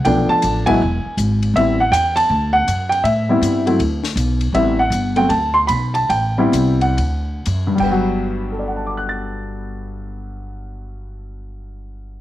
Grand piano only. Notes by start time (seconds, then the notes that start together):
0.05 F3 A3 B3 D4 G5
0.29 A5
0.66 F#3 G#3 B3 E4 G#5
1.56 G3 B3 C4 E4 E5
1.80 F#5
1.92 G5
2.16 A5
2.53 F#5
2.89 G5
3.04 E5
3.29 G3 B3 C4 E4
3.66 F#3 A3 C4 E4
4.54 G3 B3 C4 E4 E5
4.79 F#5
5.16 F#3 A3 C4 F#4 G5
5.29 A5
5.54 C6
5.67 B5
5.94 A5
6.10 G5
6.38 G3 B3 C4 E4
6.82 F#5
7.67 G2
7.75 G3
7.80 B3 G5
7.91 F#3
8.52 A4
8.59 D5
8.68 F#5
8.76 A5
8.86 D6
8.97 F#6
9.09 A6